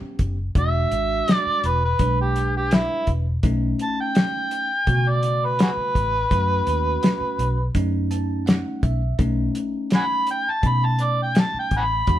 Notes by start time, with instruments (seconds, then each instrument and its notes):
Already playing: tine electric piano B3 C#4 G4
0.01 muted fingered electric bass stroke
0.19 fingered electric bass F#1, kick, closed hi-hat
0.55 fingered electric bass E1, tine electric piano G#3 D4 F#4, harmonica E5, kick, closed hi-hat
0.91 fingered electric bass G#1, closed hi-hat
1.28 snare, closed hi-hat
1.34 harmonica D5
1.46 muted fingered electric bass stroke
1.64 fingered electric bass E1, harmonica B4, closed hi-hat
1.85 harmonica B4
1.99 fingered electric bass B1, tine electric piano G#3 D4 B4, kick, closed hi-hat
2.21 harmonica G4
2.36 closed hi-hat
2.57 harmonica G4
2.71 harmonica E4, snare, closed hi-hat
3.07 fingered electric bass E1, kick, closed hi-hat
3.43 fingered electric bass B1, tine electric piano A3 C#4 D#4, kick, closed hi-hat
3.79 harmonica A5, closed hi-hat
4.01 harmonica G5
4.15 snare, closed hi-hat
4.51 closed hi-hat
4.87 fingered electric bass B2, tine electric piano C#3 A3 F#4, kick, closed hi-hat
5.09 harmonica D5
5.23 closed hi-hat
5.45 harmonica B4
5.59 harmonica F#4 G#4 B4, snare, closed hi-hat
5.77 muted fingered electric bass stroke
5.95 fingered electric bass A1, kick, closed hi-hat
6.31 fingered electric bass F#2, tine electric piano A3 C#4 F#4, kick, closed hi-hat
6.67 fingered electric bass D#2, closed hi-hat
7.03 snare, closed hi-hat
7.21 muted fingered electric bass stroke
7.39 fingered electric bass B1, closed hi-hat
7.75 fingered electric bass F#2, tine electric piano A3 C#4 D#4, kick, closed hi-hat
8.11 tine electric piano A5, closed hi-hat
8.46 tine electric piano F#5, snare, closed hi-hat
8.83 fingered electric bass B1, tine electric piano E5, kick, closed hi-hat
9.19 fingered electric bass B1, tine electric piano A3 C#4 D#4, kick, closed hi-hat
9.55 closed hi-hat
9.90 snare, closed hi-hat
9.95 harmonica F#5 G#5 B5
10.27 closed hi-hat
10.31 harmonica G5
10.51 harmonica A5
10.63 fingered electric bass B2, tine electric piano A3 C#4 D#4, kick, closed hi-hat
10.67 harmonica B5
10.86 harmonica A5
10.99 closed hi-hat
11.04 harmonica D5
11.23 harmonica G5
11.35 snare, closed hi-hat
11.40 harmonica A5
11.54 muted fingered electric bass stroke
11.60 harmonica G5
11.71 fingered electric bass A1, kick, closed hi-hat
11.77 harmonica F#5 G#5 B5
12.07 fingered electric bass E2, tine electric piano G#3 D4 F#4, kick, closed hi-hat